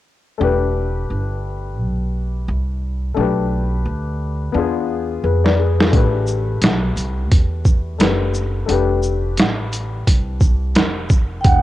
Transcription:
0.38 1.06 E1 medium
0.38 3.11 A3 medium
0.38 3.12 D4 medium
0.38 3.13 G4 medium
0.44 3.14 B4 medium
1.10 1.79 G1 medium
1.79 2.45 B1 medium
2.48 3.14 C2 medium
3.14 3.82 B1 medium
3.14 4.51 A3 medium
3.14 4.52 D4 medium
3.14 4.53 G4 medium
3.20 4.54 B4 medium
3.85 4.51 D2 medium
4.52 5.20 E2 medium
4.52 5.89 B3 medium
4.52 5.90 D4 medium
4.52 5.23 F4 medium
4.58 5.23 G#4 medium
5.24 5.89 F2 medium
5.24 5.44 G#4 soft
5.24 5.43 B4 medium
5.44 5.57 B4 medium
5.44 5.58 D5 medium
5.44 snare medium
5.58 5.78 G#4 medium
5.58 5.78 B4 medium
5.80 6.12 F4 soft
5.80 6.12 G#4 soft
5.80 snare medium
5.91 6.58 A1 medium
5.91 7.95 A3 medium
5.91 7.96 D4 medium
5.91 7.96 G4 medium
5.91 kick medium
5.91 closed hi-hat medium
5.96 7.97 B4 medium
6.27 shaker soft
6.62 6.94 B1 medium
6.62 snare medium
6.62 closed hi-hat medium
6.96 7.31 C2 medium
6.96 closed hi-hat soft
6.96 shaker soft
7.31 7.97 E2 medium
7.31 kick medium
7.31 closed hi-hat medium
7.65 kick medium
7.65 shaker soft
7.98 8.65 F#1 medium
7.98 8.65 A3 medium
7.98 8.67 D4 soft
7.98 8.68 G4 soft
7.98 8.69 B4 medium
7.98 snare medium
7.98 closed hi-hat medium
8.34 shaker soft
8.66 9.34 F1 medium
8.66 11.39 A3 medium
8.66 11.40 D4 medium
8.66 11.41 G4 medium
8.66 closed hi-hat medium
8.72 11.42 B4 medium
9.03 shaker soft
9.37 10.03 A1 medium
9.37 snare medium
9.37 closed hi-hat medium
9.73 closed hi-hat soft
9.73 shaker soft
10.07 10.72 C2 medium
10.07 kick medium
10.07 closed hi-hat loud
10.41 kick medium
10.41 shaker soft
10.75 11.41 F1 medium
10.75 snare loud
10.75 closed hi-hat medium
11.10 kick medium
11.10 shaker soft
11.41 11.62 E1 medium
11.41 11.46 G5 medium
11.41 kick loud
11.41 closed hi-hat medium
11.46 11.62 F#5 medium

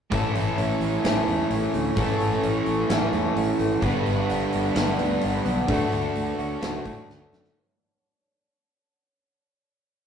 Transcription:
0.10 0.28 A1 medium
0.10 1.04 A2 medium
0.10 1.05 E3 loud
0.10 1.25 E3 medium
0.10 1.05 A3 medium
0.10 1.06 C#4 loud
0.10 1.96 E4 loud
0.10 3.79 A4 medium
0.10 3.79 E5 medium
0.10 1.94 G#5 medium
0.10 3.78 C#6 medium
0.10 kick loud
0.10 open hi-hat medium
0.15 1.07 A4 loud
0.35 0.51 A1 medium
0.35 open hi-hat medium
0.58 0.74 A1 medium
0.58 1.01 C#4 medium
0.58 open hi-hat medium
0.80 0.96 A1 medium
0.80 open hi-hat medium
1.03 1.20 A1 medium
1.03 1.95 A2 medium
1.03 1.96 E3 medium
1.03 1.96 A3 medium
1.03 1.49 C#4 medium
1.03 snare loud
1.03 open hi-hat medium
1.07 1.97 C#4 medium
1.07 1.97 A4 medium
1.26 1.43 E2 medium
1.26 1.96 E3 medium
1.26 open hi-hat medium
1.50 1.66 A1 medium
1.50 2.42 C#4 medium
1.50 open hi-hat medium
1.73 1.90 D2 medium
1.73 2.89 A3 medium
1.73 open hi-hat medium
1.96 2.13 A1 medium
1.96 2.88 A2 loud
1.96 2.89 E3 medium
1.96 3.12 E3 medium
1.96 2.89 A3 loud
1.96 2.89 C#4 loud
1.96 3.82 E4 medium
1.96 2.90 A4 loud
1.96 7.52 F#5 medium
1.96 kick loud
1.96 open hi-hat medium
2.20 2.36 A1 medium
2.20 open hi-hat medium
2.43 2.59 A1 medium
2.43 2.88 C#4 medium
2.43 open hi-hat medium
2.66 2.83 A1 medium
2.66 open hi-hat medium
2.89 3.06 A1 medium
2.89 3.81 A2 medium
2.89 3.81 E3 medium
2.89 3.82 A3 medium
2.89 3.36 C#4 medium
2.89 3.82 C#4 medium
2.89 3.83 A4 medium
2.89 snare loud
2.89 open hi-hat medium
3.12 3.29 E2 medium
3.12 3.83 E3 medium
3.12 open hi-hat soft
3.36 3.52 A1 medium
3.36 3.83 C#4 medium
3.36 open hi-hat medium
3.59 3.75 G#1 medium
3.59 3.83 A3 medium
3.59 open hi-hat medium
3.81 3.98 G1 medium
3.81 4.73 G2 medium
3.81 4.74 D3 medium
3.81 4.75 G3 medium
3.81 4.75 B3 loud
3.81 4.98 B3 medium
3.81 4.77 D4 loud
3.81 4.76 G4 medium
3.81 5.68 B4 medium
3.81 5.69 B4 loud
3.81 7.52 D5 medium
3.81 5.67 G5 medium
3.81 kick loud
3.81 open hi-hat medium
4.06 4.22 G1 medium
4.06 open hi-hat soft
4.30 4.45 G1 medium
4.30 4.75 D4 medium
4.30 open hi-hat medium
4.52 4.69 G1 medium
4.52 open hi-hat medium
4.74 4.92 G1 medium
4.74 5.67 G2 medium
4.74 5.66 D3 medium
4.74 5.67 G3 medium
4.74 5.68 B3 medium
4.74 5.21 D4 medium
4.74 5.70 D4 medium
4.74 5.69 G4 medium
4.74 snare loud
4.74 open hi-hat medium
4.99 5.15 D2 medium
4.99 5.44 B3 medium
4.99 open hi-hat medium
5.21 5.39 G1 medium
5.21 8.06 D4 medium
5.21 open hi-hat medium
5.45 5.62 B1 medium
5.45 5.68 B3 medium
5.45 open hi-hat medium
5.67 5.84 D2 loud
5.67 6.60 D3 medium
5.67 6.84 A3 medium
5.67 6.61 A3 medium
5.67 6.62 D4 medium
5.67 7.55 A4 medium
5.67 7.53 C#5 medium
5.67 7.53 A5 medium
5.67 kick loud
5.67 open hi-hat medium
5.71 6.62 F#4 loud
5.92 6.09 D2 loud
5.92 open hi-hat medium
6.15 6.32 D2 medium
6.15 open hi-hat medium
6.38 6.55 D2 medium
6.38 7.56 F#4 medium
6.38 open hi-hat medium
6.61 6.78 D2 medium
6.61 7.54 D3 medium
6.61 7.54 A3 medium
6.61 7.55 D4 medium
6.61 7.56 F#4 medium
6.61 snare loud
6.61 open hi-hat medium
6.85 7.01 A2 medium
6.85 7.31 A3 medium
6.85 kick medium
6.85 open hi-hat medium
7.09 7.25 D2 medium
7.09 snare medium
7.32 7.49 F#2 medium
7.32 7.56 A3 medium
7.32 snare medium
7.45 snare medium

